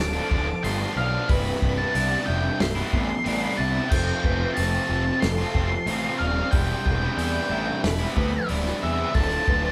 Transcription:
Already playing: D1 D4 G4 F5 A5
0.00 A4 D6
0.13 D3 F3 A3 D4
0.29 D1 D3 F3 A3 D4, kick
0.48 muted distorted electric guitar stroke
0.63 G1 D2 A2 D3 F3 A3 D4 C6, open hi-hat
0.79 D3 F3 A3 D4
0.96 B1 D3 F3 A3 D4 D5 F5
1.11 D3 F3 A3 D4
1.28 C1 C2 G2 C3 G3 B3 E4 B4 G5 B5, kick, open hi-hat
1.62 C1, kick
1.77 C3 G3 B3 E4 A5
1.93 C2 G2 C3 G3 B3 E4 D5, open hi-hat
2.26 F1 C3 G3 B3 E4 E5 G5
2.44 muted distorted electric guitar stroke
2.60 C1 C6, snare, open hi-hat
2.75 C3 G3 B3 E4
2.92 A1 C3 G3 B3 E4, kick
3.09 muted distorted electric guitar stroke
3.24 A1 C2 G2 C3 G3 B3 E4 D5, open hi-hat
3.42 C3 G3 B3 E4
3.58 C2 C3 G3 B3 E4 E5 A5
3.75 C3 G3 B3 E4
3.90 F1 F2 C3 F3 A3 C4 F4 A4 G5 A5, kick, crash
4.24 F1 B4, kick
4.40 F3 A3 C4 F4
4.54 F1 F2 C3 F3 A3 C4 F4 C5 A5, open hi-hat
4.87 F1 F3 A3 C4 F4
5.05 muted distorted electric guitar stroke
5.20 F1 A4 C6, snare, open hi-hat
5.38 F3 A3 C4 F4
5.55 F1 F3 A3 C4 F4, kick
5.71 muted distorted electric guitar stroke
5.86 A1 F2 C3 F3 A3 C4 F4, open hi-hat
6.03 F3 A3 C4 F4
6.19 D#1 F3 A3 C4 D5 F5
6.23 F4
6.36 F3 A3 C4 F4
6.51 E1 C2 G2 C3 G3 B3 E4 G5 C6, kick, open hi-hat
6.86 E1, kick
7.02 C3 G3 B3 E4
7.17 C2 E2 G2 C3 G3 B3 E4 D5 G5, open hi-hat
7.50 A1 C3 G3 B3 E4 E5
7.67 muted distorted electric guitar stroke
7.84 E1 B5, snare, open hi-hat
7.99 C3 G3 B3 E4
8.15 D2 C3 G3 B3 E4 B4, kick
8.31 muted distorted electric guitar stroke
8.47 D1 C2 G2 C3 G3 B3 E4 D5, open hi-hat
8.63 C3 G3 B3 E4, snare
8.81 E2 C3 G3 B3 E4 E5
8.96 C3 G3 B3 E4
9.12 D1 D2 A2 D3 F3 A3 D4 F4 A4 A5, kick, open hi-hat
9.16 D5
9.48 D1 B4, kick
9.61 D3 F3 A3 D4

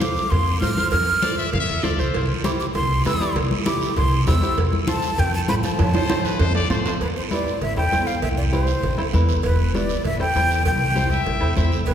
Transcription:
0.00 F4 A4 C5 D6, high conga, short guiro
0.16 short guiro
0.30 F2 C6, cowbell, high conga, low conga, long guiro
0.61 A2 F4 A4 C5 F6, high conga, short guiro
0.77 F4 A4 C5, high conga, short guiro
0.91 F2 F6, cowbell, high conga, long guiro
1.22 F4 A4 C5 D5, high conga, short guiro
1.37 E5, short guiro
1.53 F2 F5, cowbell, high conga, low conga, long guiro
1.60 E5
1.68 E2
1.83 D2 F4 A4 C5 D5, high conga, short guiro
1.98 C2 F4 A4 C5, short guiro
2.14 C2, cowbell, high conga, long guiro
2.44 E4 G4 C5 D6, high conga, short guiro
2.60 D6, short guiro
2.74 C2 C6, cowbell, high conga, low conga, long guiro
3.05 E2 E4 G4 B4 E6, high conga, low timbale, short guiro
3.20 E4 G4 D5, high conga, short guiro
3.36 C2, cowbell, high conga, low conga, long guiro
3.51 high conga
3.66 E4 G4 A4 D6, high conga, short guiro
3.81 short guiro
3.96 C2 C6, cowbell, high conga, low conga, long guiro
4.27 E2 E4 G4 C5 E6, high conga, low conga, low timbale, short guiro
4.42 E4 G4 C5, short guiro
4.57 F2, cowbell, high conga, long guiro
4.73 high conga
4.87 F4 A4 C5 A5, high conga, short guiro
5.03 short guiro
5.18 F2 G5, cowbell, high conga, low conga, long guiro
5.34 A5
5.48 A2 F4 A4 C5 B5, high conga, low timbale, short guiro
5.63 F4 A4 C5 A5, high conga, short guiro
5.79 F2, cowbell, high conga, low conga, high timbale, long guiro
5.93 C5, high conga, high timbale
6.09 F4 A4 C5, high conga, high timbale, short guiro
6.25 B4, short guiro
6.39 F2 C5, cowbell, high conga, low conga, low timbale, long guiro
6.55 D5, low timbale
6.70 A2 F4 A4 C5, high conga, low timbale, short guiro
6.86 F4 A4 C5, low timbale, short guiro
7.01 E2 B4, cowbell, high conga, long guiro
7.17 C5
7.31 E4 G4 B4 D5, high conga, short guiro
7.47 short guiro
7.61 A1 E5, cowbell, high conga, low conga, long guiro
7.77 E2 E4 A4 C5 G5
7.92 E2 E4 A4 C5, high conga, low timbale, short guiro
8.07 F5, short guiro
8.22 C2 E5, cowbell, high conga, low conga, long guiro
8.37 D5
8.52 E4 G4 C5, high conga, short guiro
8.67 short guiro
8.83 A1, cowbell, high conga, low conga, long guiro
8.98 E2 E4 A4 C5
9.13 E2 E4 A4 B4, high conga, low timbale, short guiro
9.29 short guiro
9.43 E1 B4, cowbell, high conga, long guiro
9.74 E4 G4 B4 D5, high conga, short guiro
9.89 short guiro
10.04 A1 E5, cowbell, high conga, low conga, long guiro
10.20 E2 E4 A4 C5 G5
10.35 E2 E4 A4 C5, high conga, short guiro
10.51 short guiro
10.66 C2 G5, cowbell, high conga, low conga, long guiro
10.95 E4 G4 C5, high conga, short guiro
11.10 E5, short guiro
11.26 A1, cowbell, high conga, low conga, long guiro
11.41 E2 E4 A4 C5
11.57 E2 E4 A4 C5 E5, high conga, short guiro
11.72 short guiro
11.86 E1 B4, cowbell, high conga, long guiro

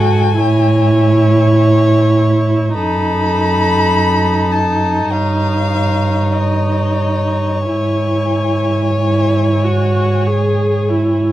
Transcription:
Already playing: G#2 F#4 A4 G#5
0.38 A2 E4 C#5
2.74 F#2 D#4 A4 B5
4.52 A5
5.11 G2 C#5 F5
6.32 D#5
7.68 G#2 E4 G#5
9.00 E4
9.64 F#4
10.27 G#4
10.89 E4

